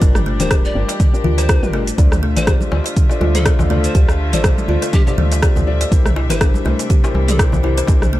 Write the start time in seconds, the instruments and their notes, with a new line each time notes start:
Already playing: string section G3 D4
0.01 fm bass G1, kalimba D4, felt piano D4 F4 G4 A#4, string section G4, kick, closed hi-hat, darbuka tek, shaker
0.15 cross-stick, mid tom, darbuka ka, shaker
0.26 kalimba A3
0.40 fm bass D1, felt piano D4 F4 G4 A#4, pan flute C5, closed hi-hat, darbuka dum, shaker
0.50 kalimba G4, kick, cross-stick, closed hi-hat, darbuka tek, shaker
0.65 pan flute D5, shaker
0.75 fm bass G1, felt piano D4 F4 G4 A#4
0.89 kalimba D5, closed hi-hat, darbuka ka, darbuka tek, shaker
1.00 kick, closed hi-hat, mid tom, darbuka ka, shaker
1.14 felt piano D4 F4 G4 A#4, shaker
1.24 fm bass D2, kalimba F4, darbuka dum
1.38 kalimba C5, pan flute C5, closed hi-hat, darbuka tek, shaker
1.49 kalimba D4, felt piano D4 F4 G4 A#4, kick, cross-stick, closed hi-hat, shaker
1.62 fm bass G1, felt piano D4 F4 G4 A#4, mid tom, shaker
1.73 kalimba A3, darbuka tek
1.87 closed hi-hat, shaker
1.98 fm bass D2, string section D3 A3 F4 E5, kalimba D4, felt piano F4 A4 C5 D5, kick, closed hi-hat, muted conga, shaker
2.12 cross-stick, mid tom, darbuka ka, shaker
2.23 kalimba A3
2.36 fm bass A1, felt piano F4 A4 C5 D5, pan flute C5, closed hi-hat, muted conga, darbuka tek, darbuka dum, shaker
2.47 kalimba G4, kick, cross-stick, closed hi-hat, low conga, shaker
2.61 high conga, shaker
2.71 fm bass D2, felt piano F4 A4 C5 D5, muted conga, high conga, darbuka tek
2.84 kalimba D5, closed hi-hat, darbuka ka, shaker
2.96 kick, closed hi-hat, mid tom, shaker
3.10 felt piano F4 A4 C5 D5, darbuka ka, muted conga, shaker
3.21 fm bass D2, kalimba F4, darbuka ka, darbuka tek, high conga
3.35 pan flute A4, kalimba C5, closed hi-hat, mid tom, shaker
3.45 kalimba D4, felt piano F4 A4 C5 D5, kick, cross-stick, closed hi-hat, high conga, shaker
3.59 fm bass D2, muted conga, darbuka tek, darbuka dum, low conga, shaker
3.70 kalimba A3, felt piano F4 A4 C5 D5, low conga
3.84 pan flute C5, closed hi-hat, shaker
3.95 fm bass D2, felt piano F4 A4 C5 D5, kalimba G4, kick, closed hi-hat, muted conga, shaker
4.09 cross-stick, darbuka ka, darbuka tek, shaker
4.33 fm bass A1, felt piano F4 A4 C5 D5, pan flute C5, kalimba D5, closed hi-hat, muted conga, high conga, darbuka dum, shaker
4.44 kick, cross-stick, closed hi-hat, darbuka tek, low conga, shaker
4.58 high conga, shaker
4.68 fm bass D2, kalimba F4, felt piano F4 A4 C5 D5, muted conga, high conga
4.82 kalimba C5, closed hi-hat, darbuka ka, shaker
4.93 kalimba D4, pan flute G4, kick, closed hi-hat, mid tom, darbuka ka, darbuka tek, high conga, shaker
5.07 felt piano F4 A4 C5 D5, pan flute G4, muted conga, low conga, shaker
5.18 fm bass D2, kalimba A3, high conga, darbuka dum
5.32 closed hi-hat, darbuka tek, shaker
5.42 felt piano F4 A4 C5 D5, kalimba G4, kick, cross-stick, closed hi-hat, shaker
5.56 fm bass D2, mid tom, muted conga, low conga, shaker
5.67 felt piano F4 A4 C5 D5, high conga
5.81 kalimba D5, closed hi-hat, darbuka tek, shaker
5.91 fm bass C2, string section C3 G3 D4, felt piano E4 G4 A#4 C5, kick, closed hi-hat, muted conga, shaker
6.05 cross-stick, mid tom, darbuka ka, shaker
6.16 kalimba E4, darbuka tek
6.29 fm bass G1, felt piano E4 G4 A#4 C5, pan flute C5, kalimba C5, closed hi-hat, muted conga, darbuka dum, shaker
6.41 kalimba D4, kick, cross-stick, closed hi-hat, low conga, shaker
6.54 high conga, shaker
6.65 fm bass C2, kalimba A3, felt piano E4 G4 A#4 C5, muted conga, darbuka tek, high conga
6.79 closed hi-hat, darbuka ka, shaker
6.90 kalimba G4, kick, closed hi-hat, mid tom, shaker
7.04 felt piano E4 G4 A#4 C5, muted conga, darbuka ka, darbuka tek, shaker
7.14 fm bass C2, darbuka ka, high conga
7.28 pan flute A4, kalimba D5, closed hi-hat, mid tom, shaker
7.39 felt piano E4 G4 A#4 C5, kick, cross-stick, closed hi-hat, high conga, shaker
7.52 fm bass C2, muted conga, darbuka tek, low conga, darbuka dum, shaker
7.63 felt piano E4 G4 A#4 C5, kalimba E4, low conga
7.77 kalimba C5, closed hi-hat, shaker
7.87 fm bass C2, kalimba D4, felt piano E4 G4 A#4 C5, kick, closed hi-hat, muted conga, darbuka tek, shaker
8.02 cross-stick, mid tom, darbuka ka, shaker
8.13 kalimba A3